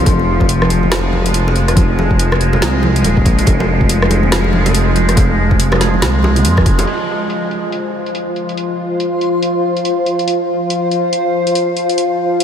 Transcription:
Already playing: synth drone F3
0.06 detuned saw bass F1, synth drone G#3, kick, closed hi-hat, high conga
0.19 muted conga
0.40 kick, muted conga
0.49 closed hi-hat
0.62 cross-stick, high conga
0.70 closed hi-hat, muted conga
0.83 low conga
0.92 cross-stick, snare, closed hi-hat, muted conga
1.13 detuned saw bass F1, high conga
1.26 closed hi-hat, muted conga
1.34 closed hi-hat
1.48 muted conga
1.56 closed hi-hat
1.68 cross-stick, closed hi-hat
1.76 kick, closed hi-hat, muted conga, high conga
1.99 muted conga
2.11 kick
2.19 closed hi-hat
2.32 cross-stick, muted conga, high conga
2.41 closed hi-hat
2.53 muted conga, low conga
2.62 detuned saw bass C2, snare, closed hi-hat, low conga
2.83 muted conga, high conga
2.96 closed hi-hat
3.04 detuned saw bass D#1, closed hi-hat, muted conga
3.17 kick
3.26 detuned saw bass A#1, kick, closed hi-hat
3.38 closed hi-hat, muted conga
3.46 detuned saw bass F1, kick, closed hi-hat, high conga
3.60 muted conga
3.81 kick
3.89 closed hi-hat, muted conga
4.02 cross-stick, high conga
4.11 closed hi-hat, muted conga
4.23 low conga
4.32 cross-stick, snare, closed hi-hat
4.44 muted conga
4.53 detuned saw bass F1, high conga
4.66 closed hi-hat, muted conga
4.75 closed hi-hat
4.96 closed hi-hat, muted conga
5.09 cross-stick, closed hi-hat
5.17 kick, closed hi-hat, muted conga, high conga
5.51 kick, muted conga
5.60 closed hi-hat
5.72 cross-stick, muted conga, high conga
5.81 snare, closed hi-hat
5.94 low conga
6.02 detuned saw bass C2, snare, closed hi-hat, muted conga, low conga
6.23 muted conga, high conga
6.36 closed hi-hat, low conga
6.45 detuned saw bass F2, closed hi-hat
6.57 kick, cross-stick, muted conga
6.66 detuned saw bass F1, kick, closed hi-hat
6.79 closed hi-hat, muted conga
6.87 synth drone F3 F4, synth texture C5, closed hi-hat, crash
7.30 closed hi-hat
7.51 closed hi-hat
7.72 closed hi-hat
8.06 closed hi-hat
8.15 closed hi-hat
8.36 closed hi-hat
8.49 closed hi-hat
8.57 closed hi-hat
9.00 closed hi-hat
9.21 closed hi-hat
9.43 closed hi-hat
9.77 closed hi-hat
9.85 closed hi-hat
10.06 closed hi-hat
10.19 closed hi-hat
10.28 closed hi-hat
10.70 closed hi-hat
10.91 closed hi-hat
11.13 closed hi-hat
11.47 closed hi-hat
11.55 closed hi-hat
11.77 closed hi-hat
11.89 closed hi-hat
11.98 closed hi-hat
12.40 closed hi-hat

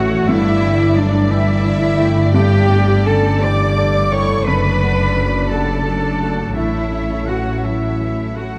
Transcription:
Already playing: double bass section A1, grand piano A2 E3 F#3 A3 C#4, harp A2 A3 C#4 A4 C#5 A5, clarinet A3, viola section A3 E5, french horn section F#4, cello section F#4, violin section C#5 F#5, oboe F#5, flute section F#5
0.10 harp E3, viola section C#5
0.27 double bass section G1, harp G2, grand piano G2, clarinet G3, cello section E4, french horn section E4, viola section A4, violin section D5 E5, oboe E5, flute section E5
0.45 harp A3, viola section D5
0.62 harp D3, grand piano D4, viola section G5
0.79 harp A4, viola section D5
0.95 grand piano D3, clarinet F#3, cello section D4, french horn section D4, viola section A4, flute section D5, oboe D5, violin section D5
1.13 viola section D5
1.29 grand piano E3, clarinet G3, cello section E4, french horn section E4, violin section E5, flute section E5, oboe E5, viola section G5, harp A5
1.46 viola section D5
1.64 grand piano D3, viola section A4, harp A4
1.81 viola section D5
1.98 grand piano A3, harp A3, viola section G5
2.16 harp D3, viola section D5
2.32 harp G2, grand piano G2, viola section A3 A4, clarinet D4, cello section G4, french horn section G4, violin section G5, flute section G5, oboe G5
2.50 harp A3, viola section D5
2.69 grand piano D4, viola section G5
2.87 harp A4, viola section D5
3.05 grand piano D3, clarinet C#4, cello section A4, viola section A4, french horn section A4, violin section A5, flute section A5, oboe A5
3.23 viola section D5
3.40 grand piano E3, clarinet G4, cello section D5, french horn section D5, viola section G5, harp A5, violin section D6, oboe D6, flute section D6
3.58 viola section D5
3.76 grand piano D3, harp A4, viola section A4
3.93 harp D4, viola section D5
4.11 harp A3, grand piano A3, clarinet E4, french horn section A4, cello section C#5, viola section G5, oboe C#6, violin section C#6, flute section C#6
4.29 harp D3, viola section D5
4.45 double bass section F#1, harp F#2, grand piano F#2, clarinet D4, viola section A4, cello section B4, french horn section B4, violin section D5 B5, flute section B5, oboe B5
4.63 harp A3, viola section D5
4.81 harp D4, grand piano D4, viola section F#5
4.98 harp A4, viola section D5
5.16 grand piano F#3, harp D4, viola section A4
5.34 harp D5, viola section D5
5.50 clarinet D4, grand piano G4, french horn section A4, cello section A4, viola section F#5, oboe A5, harp A5, violin section A5, flute section A5
5.68 viola section D5, harp D5
5.85 grand piano F#3, harp A4, viola section A4
6.03 harp D4, viola section D5
6.21 grand piano A3, harp A3, viola section F#5
6.39 harp F#3, viola section D5
6.55 double bass section A1, grand piano A2, harp A2, viola section A3 A4, clarinet A3, cello section E4, french horn section E4, violin section C#5 E5, flute section E5, oboe E5
6.75 harp A3
6.91 grand piano C#4, harp C#4
7.10 harp A4
7.26 grand piano E3, clarinet A3, harp C#4, french horn section F#4, cello section F#4, flute section F#5, oboe F#5, violin section F#5
7.45 harp C#5
7.61 grand piano F#3, viola section A3 A4, clarinet A3, cello section E4, french horn section E4, violin section C#5 E5, flute section E5, oboe E5, harp A5
7.81 harp C#5
7.99 grand piano E3, harp A4
8.18 harp C#4
8.34 clarinet A3, grand piano A3, harp A3, cello section F#4, french horn section F#4, violin section F#5, oboe F#5, flute section F#5
8.55 harp E3

